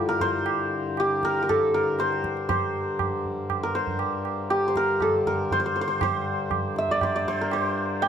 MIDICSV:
0, 0, Header, 1, 4, 480
1, 0, Start_track
1, 0, Tempo, 502934
1, 2382, Time_signature, 7, 2, 24, 8
1, 7713, End_track
2, 0, Start_track
2, 0, Title_t, "Santur"
2, 0, Program_c, 0, 15
2, 0, Note_on_c, 0, 64, 44
2, 0, Note_on_c, 0, 65, 45
2, 0, Note_on_c, 0, 67, 49
2, 0, Note_on_c, 0, 69, 56
2, 0, Note_on_c, 0, 72, 92
2, 83, Note_on_c, 0, 70, 91
2, 140, Note_off_c, 0, 69, 0
2, 199, Note_off_c, 0, 72, 0
2, 203, Note_on_c, 0, 72, 93
2, 948, Note_off_c, 0, 67, 0
2, 952, Note_on_c, 0, 67, 85
2, 1186, Note_off_c, 0, 70, 0
2, 1190, Note_on_c, 0, 70, 99
2, 1355, Note_off_c, 0, 70, 0
2, 1359, Note_on_c, 0, 70, 66
2, 1424, Note_on_c, 0, 69, 89
2, 1481, Note_off_c, 0, 70, 0
2, 1664, Note_on_c, 0, 70, 88
2, 1721, Note_off_c, 0, 69, 0
2, 1902, Note_off_c, 0, 72, 0
2, 1905, Note_on_c, 0, 72, 96
2, 2086, Note_off_c, 0, 65, 0
2, 2184, Note_off_c, 0, 64, 0
2, 2371, Note_off_c, 0, 72, 0
2, 2375, Note_on_c, 0, 72, 83
2, 3464, Note_off_c, 0, 70, 0
2, 3468, Note_on_c, 0, 70, 76
2, 3575, Note_off_c, 0, 72, 0
2, 3579, Note_on_c, 0, 72, 84
2, 3947, Note_off_c, 0, 67, 0
2, 4298, Note_on_c, 0, 67, 84
2, 4461, Note_off_c, 0, 72, 0
2, 4464, Note_on_c, 0, 72, 61
2, 4548, Note_off_c, 0, 70, 0
2, 4552, Note_on_c, 0, 70, 89
2, 4792, Note_on_c, 0, 69, 74
2, 4849, Note_off_c, 0, 70, 0
2, 5029, Note_on_c, 0, 70, 83
2, 5087, Note_off_c, 0, 69, 0
2, 5268, Note_off_c, 0, 72, 0
2, 5272, Note_on_c, 0, 72, 101
2, 5339, Note_off_c, 0, 72, 0
2, 5342, Note_on_c, 0, 72, 72
2, 5396, Note_off_c, 0, 72, 0
2, 5400, Note_on_c, 0, 72, 72
2, 5491, Note_off_c, 0, 72, 0
2, 5495, Note_on_c, 0, 72, 60
2, 5544, Note_off_c, 0, 72, 0
2, 5548, Note_on_c, 0, 72, 80
2, 5605, Note_off_c, 0, 72, 0
2, 5609, Note_on_c, 0, 72, 70
2, 5749, Note_off_c, 0, 72, 0
2, 5753, Note_on_c, 0, 72, 93
2, 6475, Note_on_c, 0, 76, 85
2, 6597, Note_on_c, 0, 74, 94
2, 6707, Note_off_c, 0, 72, 0
2, 6711, Note_on_c, 0, 72, 96
2, 6827, Note_off_c, 0, 74, 0
2, 6831, Note_on_c, 0, 74, 90
2, 6944, Note_off_c, 0, 72, 0
2, 6947, Note_on_c, 0, 72, 94
2, 7071, Note_off_c, 0, 70, 0
2, 7075, Note_on_c, 0, 70, 76
2, 7184, Note_off_c, 0, 72, 0
2, 7188, Note_on_c, 0, 72, 85
2, 7293, Note_off_c, 0, 67, 0
2, 7655, Note_on_c, 0, 79, 112
2, 7713, Note_off_c, 0, 70, 0
2, 7713, Note_off_c, 0, 72, 0
2, 7713, Note_off_c, 0, 74, 0
2, 7713, Note_off_c, 0, 76, 0
2, 7713, Note_off_c, 0, 79, 0
2, 7713, End_track
3, 0, Start_track
3, 0, Title_t, "Harmonium"
3, 0, Program_c, 1, 20
3, 0, Note_on_c, 1, 43, 60
3, 0, Note_on_c, 1, 50, 65
3, 7713, Note_off_c, 1, 43, 0
3, 7713, Note_off_c, 1, 50, 0
3, 7713, End_track
4, 0, Start_track
4, 0, Title_t, "Tabla"
4, 197, Note_on_c, 9, 64, 55
4, 292, Note_off_c, 9, 64, 0
4, 438, Note_on_c, 9, 60, 82
4, 533, Note_off_c, 9, 60, 0
4, 929, Note_on_c, 9, 60, 71
4, 1025, Note_off_c, 9, 60, 0
4, 1174, Note_on_c, 9, 37, 63
4, 1270, Note_off_c, 9, 37, 0
4, 1424, Note_on_c, 9, 60, 73
4, 1424, Note_on_c, 9, 64, 63
4, 1520, Note_off_c, 9, 60, 0
4, 1520, Note_off_c, 9, 64, 0
4, 1896, Note_on_c, 9, 62, 71
4, 1992, Note_off_c, 9, 62, 0
4, 2028, Note_on_c, 9, 62, 58
4, 2123, Note_off_c, 9, 62, 0
4, 2140, Note_on_c, 9, 37, 58
4, 2235, Note_off_c, 9, 37, 0
4, 2261, Note_on_c, 9, 62, 52
4, 2356, Note_off_c, 9, 62, 0
4, 2378, Note_on_c, 9, 60, 102
4, 2378, Note_on_c, 9, 64, 90
4, 2474, Note_off_c, 9, 60, 0
4, 2474, Note_off_c, 9, 64, 0
4, 2856, Note_on_c, 9, 60, 74
4, 2856, Note_on_c, 9, 64, 64
4, 2952, Note_off_c, 9, 60, 0
4, 2952, Note_off_c, 9, 64, 0
4, 3105, Note_on_c, 9, 64, 54
4, 3200, Note_off_c, 9, 64, 0
4, 3338, Note_on_c, 9, 60, 75
4, 3338, Note_on_c, 9, 64, 61
4, 3434, Note_off_c, 9, 60, 0
4, 3434, Note_off_c, 9, 64, 0
4, 3581, Note_on_c, 9, 62, 60
4, 3677, Note_off_c, 9, 62, 0
4, 3693, Note_on_c, 9, 64, 51
4, 3788, Note_off_c, 9, 64, 0
4, 3810, Note_on_c, 9, 60, 79
4, 3905, Note_off_c, 9, 60, 0
4, 4056, Note_on_c, 9, 60, 57
4, 4152, Note_off_c, 9, 60, 0
4, 4297, Note_on_c, 9, 60, 73
4, 4393, Note_off_c, 9, 60, 0
4, 4540, Note_on_c, 9, 37, 63
4, 4635, Note_off_c, 9, 37, 0
4, 4776, Note_on_c, 9, 60, 71
4, 4776, Note_on_c, 9, 64, 66
4, 4872, Note_off_c, 9, 60, 0
4, 4872, Note_off_c, 9, 64, 0
4, 5021, Note_on_c, 9, 64, 52
4, 5117, Note_off_c, 9, 64, 0
4, 5259, Note_on_c, 9, 63, 68
4, 5259, Note_on_c, 9, 64, 60
4, 5354, Note_off_c, 9, 63, 0
4, 5354, Note_off_c, 9, 64, 0
4, 5736, Note_on_c, 9, 60, 105
4, 5736, Note_on_c, 9, 64, 88
4, 5832, Note_off_c, 9, 60, 0
4, 5832, Note_off_c, 9, 64, 0
4, 6211, Note_on_c, 9, 60, 73
4, 6211, Note_on_c, 9, 64, 70
4, 6306, Note_off_c, 9, 60, 0
4, 6306, Note_off_c, 9, 64, 0
4, 6453, Note_on_c, 9, 62, 58
4, 6548, Note_off_c, 9, 62, 0
4, 6571, Note_on_c, 9, 64, 54
4, 6666, Note_off_c, 9, 64, 0
4, 6694, Note_on_c, 9, 60, 74
4, 6694, Note_on_c, 9, 64, 66
4, 6789, Note_off_c, 9, 60, 0
4, 6789, Note_off_c, 9, 64, 0
4, 6933, Note_on_c, 9, 64, 51
4, 7029, Note_off_c, 9, 64, 0
4, 7172, Note_on_c, 9, 60, 85
4, 7268, Note_off_c, 9, 60, 0
4, 7660, Note_on_c, 9, 60, 71
4, 7713, Note_off_c, 9, 60, 0
4, 7713, End_track
0, 0, End_of_file